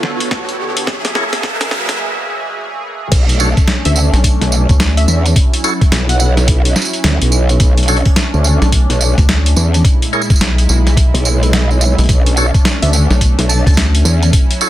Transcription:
Already playing: D3 B3 A4 C#5, riser
0.03 snare
0.20 closed hi-hat
0.31 kick, snare
0.49 closed hi-hat
0.77 closed hi-hat
0.87 B2 F#3 A#3 G#4 E5, kick, snare, noise sweep
1.05 snare, closed hi-hat
1.15 E4 G#4 A#4 C#5, snare
1.33 snare, closed hi-hat
1.43 kick, snare
1.61 snare, closed hi-hat
1.71 snare
1.89 snare, closed hi-hat
3.11 B1 A3 C#4 D4, kick, closed hi-hat, tambourine, crash
3.29 closed hi-hat, tambourine
3.40 D4 F#4 A4 C#5, tambourine
3.57 kick, closed hi-hat, tambourine
3.68 snare, closed hi-hat, tambourine
3.85 D2 E5, closed hi-hat, tambourine
3.96 tambourine
4.13 B1, snare, closed hi-hat, tambourine
4.24 kick, closed hi-hat, tambourine
4.41 B1, snare, closed hi-hat, tambourine
4.52 tambourine
4.69 D2, kick, closed hi-hat, tambourine
4.80 snare, closed hi-hat, tambourine
4.97 E5, closed hi-hat, tambourine
5.08 E2 E5, tambourine
5.26 closed hi-hat, tambourine
5.36 F#3 C#4 E4, kick, closed hi-hat, tambourine
5.54 closed hi-hat, tambourine
5.64 E4 F#4 A4 C#5, tambourine
5.81 kick, closed hi-hat, tambourine
5.92 B1, snare, closed hi-hat, tambourine
6.09 F#5, closed hi-hat, tambourine
6.20 F#5, tambourine
6.37 snare, closed hi-hat, tambourine
6.48 kick, closed hi-hat, tambourine
6.65 closed hi-hat, tambourine
6.76 snare, tambourine
6.82 tambourine
6.85 tambourine
6.93 closed hi-hat, tambourine
7.04 D2, snare, closed hi-hat, tambourine
7.21 B1, closed hi-hat, tambourine
7.32 tambourine
7.49 closed hi-hat, tambourine
7.60 A3 D4, kick, closed hi-hat, tambourine
7.78 closed hi-hat, tambourine
7.83 closed hi-hat
7.88 D4 F#4 A4 C#5, closed hi-hat, tambourine
7.97 closed hi-hat
8.05 kick, closed hi-hat, tambourine
8.16 snare, closed hi-hat, tambourine
8.34 D2, tambourine
8.44 tambourine
8.62 B1, snare, closed hi-hat, tambourine
8.72 kick, closed hi-hat, tambourine
8.89 B1, snare, closed hi-hat, tambourine
9.01 tambourine
9.18 D2, kick, closed hi-hat, tambourine
9.29 snare, closed hi-hat, tambourine
9.46 closed hi-hat, tambourine
9.56 E2, tambourine
9.74 closed hi-hat, tambourine
9.84 A#2 G#3 E4, kick, closed hi-hat, tambourine
10.02 closed hi-hat, tambourine
10.13 E4 G#4 A#4 C#5, tambourine
10.21 tambourine
10.30 kick, closed hi-hat, tambourine
10.36 tambourine
10.41 B1, snare, closed hi-hat, tambourine
10.58 closed hi-hat, tambourine
10.69 B1, tambourine
10.87 snare, closed hi-hat, tambourine
10.97 kick, closed hi-hat, tambourine
11.14 B1, closed hi-hat, tambourine
11.25 tambourine
11.43 closed hi-hat, tambourine
11.53 snare, closed hi-hat, tambourine
11.71 tambourine
11.81 tambourine
11.98 B1, closed hi-hat, tambourine
12.00 closed hi-hat
12.04 closed hi-hat
12.06 closed hi-hat
12.07 B1 A3 C#4 D4, kick, closed hi-hat
12.09 closed hi-hat, tambourine
12.26 closed hi-hat, tambourine
12.37 D4 F#4 A4 C#5, tambourine
12.54 kick, closed hi-hat, tambourine
12.65 snare, closed hi-hat, tambourine
12.82 D2 E5, closed hi-hat, tambourine
12.93 tambourine
13.10 B1, snare, tambourine
13.21 kick, closed hi-hat, tambourine
13.38 B1, snare, closed hi-hat, tambourine
13.49 A5, tambourine
13.66 D2 A5, kick, closed hi-hat, tambourine
13.74 snare, closed hi-hat, tambourine
13.77 tambourine
13.95 closed hi-hat, tambourine
14.05 E2, tambourine
14.23 closed hi-hat, tambourine
14.33 F#3 E4, kick, closed hi-hat, tambourine
14.51 closed hi-hat, tambourine
14.61 E4 F#4 A4 C#5, tambourine

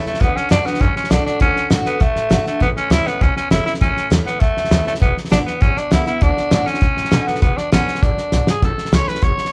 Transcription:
Already playing: E2
0.05 A3 C#4 E4, muted upright bass stroke, snare
0.14 snare
0.20 D2 D3 B3, kick, snare
0.35 C#4, muted upright bass stroke, snare
0.49 F#2 D3 A3 D4 F#4, snare, hi-hat pedal
0.64 B3 D4 F#4, muted upright bass stroke, snare
0.74 snare
0.80 F#2 A2 C#4, kick, snare
0.96 C#4, muted upright bass stroke, snare
1.04 snare
1.10 B1 D3 A3 D4 F#4, snare, hi-hat pedal
1.26 D4, snare
1.40 D2 D3 C#4, kick, snare
1.56 muted upright bass stroke, snare
1.70 A2 D3 A3 D4 F#4, snare, hi-hat pedal
1.86 B3, muted upright bass stroke, snare
2.00 A2 B2 A3, kick, snare
2.16 A2, snare
2.30 G#1 D3 A3 D4 F#4, snare, hi-hat pedal
2.46 A3 D4 F#4, muted upright bass stroke, snare
2.60 A1 A2 B3, kick, snare
2.76 C#4, muted upright bass stroke, snare
2.90 D2 E3 A3 C#4 E4, snare, hi-hat pedal
3.06 B3 C#4, muted upright bass stroke, snare
3.21 C#2 E2 C#4, kick, snare
3.35 C#4, muted upright bass stroke, snare
3.50 F#1 E3 A3 C#4 E4, snare, hi-hat pedal
3.65 C#4 E4, snare
3.74 snare
3.81 A1 A2 C#4, kick, snare
3.97 snare
4.10 E2 E3 A3 C#4 E4, snare, hi-hat pedal
4.25 B3 C#4 E4, muted upright bass stroke, snare
4.40 E2 F#2 A3, kick, snare
4.56 E2, snare
4.64 snare
4.70 D#2 E3 A3 C#4 E4, snare, hi-hat pedal
4.85 A3 C#4 E4, muted upright bass stroke, snare
4.95 snare
5.00 E1 E2 B3, kick, snare
5.17 muted upright bass stroke, snare
5.25 snare
5.29 A1 D3 G#3 B3 D4 E4, snare, hi-hat pedal
5.45 B3 E4, muted upright bass stroke, snare
5.61 G#1 B2 C#4, kick, snare
5.77 D4, muted upright bass stroke, snare
5.91 C#2 D3 G#3 B3 E4, snare, hi-hat pedal
6.06 B3 E4, muted upright bass stroke, snare
6.21 D2 D3 D4, kick, snare
6.37 muted upright bass stroke, snare
6.51 A2 D3 A3 D4 F#4, snare, hi-hat pedal
6.66 C#4 D4 F#4, muted upright bass stroke, snare
6.74 snare
6.81 A2 B2, kick, snare
6.97 A2, snare
7.05 snare
7.11 B2 D3 A3 D4 F#4, snare, hi-hat pedal
7.27 B3, muted upright bass stroke, snare
7.35 snare
7.42 E1 E2 B3, kick, snare
7.57 D4, muted upright bass stroke, snare
7.72 A1 D3 G#3 B3 C#4 E4, snare, hi-hat pedal
7.87 E4, muted upright bass stroke, snare
7.95 snare
8.03 G#1 F#2 D4, kick, snare
8.17 muted upright bass stroke, snare
8.32 B1 G#2, snare, hi-hat pedal
8.47 G#4, snare
8.62 A1 A2 A4, kick, snare
8.78 muted upright bass stroke, snare
8.85 snare
8.92 C#2 E3 A3 C#4 E4 C#5, snare, hi-hat pedal
9.07 C#4 E4 B4, snare
9.15 snare
9.22 F#1 E2 C#5, kick, snare
9.38 muted upright bass stroke, snare
9.45 snare

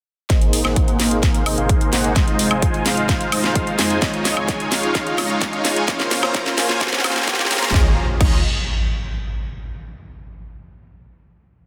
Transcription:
0.30 G#1 C3 G#3 A#3 D#4 G#4 C5 D#5, kick, snare, closed hi-hat, riser
0.42 closed hi-hat
0.53 open hi-hat
0.65 G#1 A#3 D#4 G#4 C5 F#5, snare, closed hi-hat, high woodblock
0.76 kick, closed hi-hat
0.88 closed hi-hat
1.00 G#1 A#3 D#4 G#4 C5 F5, snare, open hi-hat
1.11 closed hi-hat
1.23 kick, snare, closed hi-hat
1.34 closed hi-hat
1.46 G#1 A#3 D#4 G#4 C5 D#5, open hi-hat, high woodblock
1.58 G#1 A#3 D#4 G#4 C5 F5, closed hi-hat
1.69 kick, closed hi-hat
1.81 closed hi-hat
1.93 G#1 A#3 D#4 G#4 C5 F#5, snare, open hi-hat
2.04 closed hi-hat
2.16 F1 G#3 D#4 F4, kick, snare, closed hi-hat
2.28 closed hi-hat
2.39 open hi-hat
2.51 F1 G#3 D#4 F4 C5 G#5, closed hi-hat, high woodblock
2.62 kick, closed hi-hat
2.74 closed hi-hat
2.86 F1 G#3 D#4 F4 C5 F5, snare, open hi-hat
2.97 closed hi-hat
3.09 kick, snare, closed hi-hat
3.21 closed hi-hat
3.32 F1 G#3 D#4 F4 C5 D#5, open hi-hat, high woodblock
3.44 F1 G#3 D#4 F4 C5 F5, snare, closed hi-hat
3.55 kick, closed hi-hat
3.67 closed hi-hat
3.79 F2 G#3 D#4 F4 C5 G#5, snare, open hi-hat
3.90 closed hi-hat
4.02 C#2 C#3 F4, kick, snare, closed hi-hat
4.14 closed hi-hat
4.25 snare, open hi-hat
4.37 C#2 G#3 D#4 F4 C#5 G#5, closed hi-hat, high woodblock
4.48 kick, snare, closed hi-hat
4.60 closed hi-hat
4.72 C#2 G#3 D#4 F4 C#5 F5, snare, open hi-hat
4.83 closed hi-hat
4.95 kick, snare, closed hi-hat
5.07 closed hi-hat
5.18 C#2 G#3 D#4 F4 C#5 D#5, snare, open hi-hat, high woodblock
5.30 C#2 G#3 D#4 F4 C#5 F5, closed hi-hat
5.42 kick, snare, closed hi-hat
5.53 closed hi-hat
5.65 C#2 G#3 D#4 F4 C#5 G#5, snare, open hi-hat
5.76 closed hi-hat
5.88 A#1 A#3 C#4 F4 C5 F5, kick, snare, closed hi-hat
6.00 snare, closed hi-hat
6.11 snare, open hi-hat
6.23 A#1 A#3 C#4 F4 C5 A#5, snare, closed hi-hat, high woodblock
6.35 kick, snare, closed hi-hat
6.46 snare, closed hi-hat
6.58 A#1 A#3 C#4 F4 C5 G#5, snare, open hi-hat
6.69 snare, closed hi-hat
6.81 kick, snare, closed hi-hat
6.87 snare
6.93 snare, closed hi-hat
6.99 snare
7.04 A#1 A#3 C#4 F4 C5 F5, snare, open hi-hat, high woodblock
7.10 snare
7.16 A#1 A#3 C#4 F4 C5 G#5, snare, closed hi-hat
7.22 snare
7.28 kick, snare, closed hi-hat
7.33 snare
7.39 snare, closed hi-hat
7.45 snare
7.51 A#1 A#3 C#4 F4 C5 A#5, snare, open hi-hat
7.57 snare
7.63 snare, closed hi-hat
7.68 snare
7.74 C#2 D#3 G#3 C#4 D#4 F4 C#5 D#5, kick, snare, impact
8.21 C#2 G#3 D#4 F4 C#5 D#5, kick, crash

